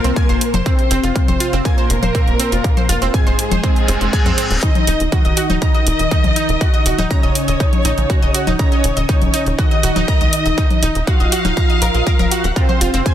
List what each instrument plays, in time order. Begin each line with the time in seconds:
Already playing: analog polysynth A#2 A#3, violin section A#4
0.04 analog synth bass C2, synth pluck C4 C5, closed hi-hat
0.16 synth pluck G#5 G#6, kick, closed hi-hat
0.29 analog synth bass F1, synth pluck C5 C6, closed hi-hat
0.41 open hi-hat
0.54 analog synth bass F1, synth pluck C5 C6, closed hi-hat, low conga
0.66 analog polysynth C3 C4, synth pluck C4 C5, violin section C5, kick, closed hi-hat
0.79 closed hi-hat
0.91 analog synth bass F1, synth pluck C4 C5, open hi-hat
1.03 analog synth bass F1, synth pluck F4 F5, closed hi-hat
1.16 analog polysynth C3 C4, violin section C5, kick, closed hi-hat
1.28 analog synth bass F1, synth pluck C5 C6, closed hi-hat, low conga
1.40 synth pluck F4 F5, open hi-hat
1.53 analog synth bass F1, synth pluck C4 C5, closed hi-hat
1.65 analog polysynth A#2 A#3, violin section A#4, synth pluck G#5 G#6, kick, closed hi-hat
1.78 synth pluck C5 C6, closed hi-hat
1.90 analog synth bass F1, open hi-hat
2.03 analog synth bass F1, synth pluck C5 C6, closed hi-hat, low conga
2.15 synth pluck C4 C5, kick, closed hi-hat
2.27 analog synth bass D#1, closed hi-hat
2.40 synth pluck C4 C5, open hi-hat
2.52 analog synth bass F1, synth pluck F4 F5, closed hi-hat
2.64 kick, closed hi-hat
2.77 synth pluck C5 C6, closed hi-hat, low conga
2.89 analog synth bass F1, synth pluck F4 F5, open hi-hat
3.02 analog synth bass F1, synth pluck C4 C5, closed hi-hat
3.14 analog polysynth G#2 G#3, violin section G#4, synth pluck G#5 G#6, kick, closed hi-hat
3.27 analog synth bass F1, synth pluck C5 C6, closed hi-hat
3.39 open hi-hat
3.51 analog synth bass F1, synth pluck C5 C6, closed hi-hat, low conga
3.64 synth pluck C4 C5, kick, closed hi-hat, reverse cymbal
3.76 closed hi-hat
3.88 analog synth bass F1, synth pluck C4 C5, open hi-hat
4.01 analog synth bass F1, synth pluck C4 C5, closed hi-hat
4.13 synth pluck G#5 G#6, kick, closed hi-hat
4.26 analog synth bass F2, synth pluck C4 C5, closed hi-hat, low conga
4.38 synth pluck C4 C5, open hi-hat
4.51 analog synth bass D#1, closed hi-hat
4.63 analog polysynth D#3 D#4, synth pluck D#4 D#5, violin section D#5, kick, closed hi-hat
4.75 closed hi-hat, low conga
4.87 analog synth bass D#1, synth pluck D#4 D#5, open hi-hat
5.00 analog synth bass D#1, closed hi-hat
5.12 analog polysynth D#3 D#4, synth pluck F#4 F#5, violin section D#5, kick, closed hi-hat
5.25 analog synth bass D#1, synth pluck D#5 D#6, closed hi-hat
5.37 synth pluck F#4 F#5, open hi-hat
5.50 analog synth bass D#1, synth pluck D#4 D#5, closed hi-hat, low conga
5.62 analog polysynth D#3 D#4, violin section D#5, synth pluck A#5 A#6, kick, closed hi-hat
5.75 synth pluck D#5 D#6, closed hi-hat
5.87 analog synth bass D#1, open hi-hat
5.99 analog synth bass D#1, synth pluck D#5 D#6, closed hi-hat
6.11 synth pluck D#4 D#5, kick, closed hi-hat
6.24 analog synth bass C#2, closed hi-hat, low conga
6.36 synth pluck D#4 D#5, open hi-hat
6.49 analog synth bass D#1, closed hi-hat
6.61 synth pluck F#4 F#5, kick, closed hi-hat
6.74 synth pluck D#5 D#6, closed hi-hat
6.86 analog synth bass D#1, synth pluck F#4 F#5, open hi-hat
6.98 analog synth bass D#1, synth pluck D#4 D#5, closed hi-hat, low conga
7.11 analog polysynth C#3 C#4, violin section C#5, synth pluck A#5 A#6, kick, closed hi-hat
7.23 analog synth bass D#1, synth pluck D#5 D#6, closed hi-hat
7.35 open hi-hat
7.48 analog synth bass D#1, synth pluck D#5 D#6, closed hi-hat
7.60 synth pluck D#4 D#5, kick, closed hi-hat
7.73 closed hi-hat, low conga
7.85 analog synth bass A#1, synth pluck D#4 D#5, open hi-hat
7.98 analog synth bass A#1, closed hi-hat
8.10 synth pluck F#4 F#5, kick, closed hi-hat
8.22 analog synth bass D#1, synth pluck D#5 D#6, closed hi-hat
8.34 synth pluck F#4 F#5, open hi-hat
8.47 analog synth bass D#1, synth pluck D#4 D#5, closed hi-hat, low conga
8.59 analog polysynth C#3 C#4, violin section C#5, synth pluck A#5 A#6, kick, closed hi-hat
8.72 synth pluck D#5 D#6, closed hi-hat
8.84 analog synth bass D#1, open hi-hat
8.97 analog synth bass D#1, synth pluck D#5 D#6, closed hi-hat
9.09 analog polysynth C#3 C#4, synth pluck D#4 D#5, violin section C#5, kick, closed hi-hat
9.22 analog synth bass D#1, closed hi-hat, low conga
9.34 synth pluck D#4 D#5, open hi-hat
9.46 analog synth bass D#1, closed hi-hat
9.59 analog polysynth D#3 D#4, synth pluck F#4 F#5, violin section D#5, kick, closed hi-hat
9.71 synth pluck D#5 D#6, closed hi-hat
9.83 analog synth bass D#1, synth pluck F#4 F#5, open hi-hat
9.96 analog synth bass D#1, synth pluck D#4 D#5, closed hi-hat, low conga
10.08 synth pluck A#5 A#6, kick, closed hi-hat
10.21 analog synth bass C#2, synth pluck D#5 D#6, closed hi-hat
10.33 open hi-hat
10.46 analog synth bass D#1, synth pluck D#5 D#6, closed hi-hat
10.58 synth pluck D#4 D#5, kick, closed hi-hat
10.71 closed hi-hat, low conga
10.83 analog synth bass D#1, synth pluck D#4 D#5, open hi-hat
10.95 analog synth bass D#1, closed hi-hat
11.07 analog polysynth F3 F4, synth pluck F#4 F#5, violin section F5, kick, closed hi-hat
11.20 analog synth bass D#1, synth pluck D#5 D#6, closed hi-hat
11.32 synth pluck F#4 F#5, open hi-hat
11.45 analog synth bass D#1, synth pluck D#4 D#5, closed hi-hat, low conga
11.57 synth pluck A#5 A#6, kick, closed hi-hat
11.70 synth pluck D#5 D#6, closed hi-hat
11.82 analog synth bass A#1, synth pluck A#4 A#5, open hi-hat
11.94 analog synth bass A#1, synth pluck D#5 D#6, closed hi-hat
12.07 synth pluck A#4 A#5, kick, closed hi-hat
12.19 analog synth bass D#1, synth pluck A#4 A#5, closed hi-hat, low conga
12.31 synth pluck F#4 F#5, open hi-hat
12.44 analog synth bass D#1, synth pluck F#5 F#6, closed hi-hat
12.56 analog polysynth C3 C4, synth pluck F4 F5, violin section C5, kick, closed hi-hat
12.69 synth pluck C5 C6, closed hi-hat, low conga
12.81 analog synth bass F1, synth pluck F4 F5, open hi-hat
12.94 analog synth bass F1, synth pluck C4 C5, closed hi-hat
13.06 analog polysynth C3 C4, violin section C5, synth pluck G#5 G#6, kick, closed hi-hat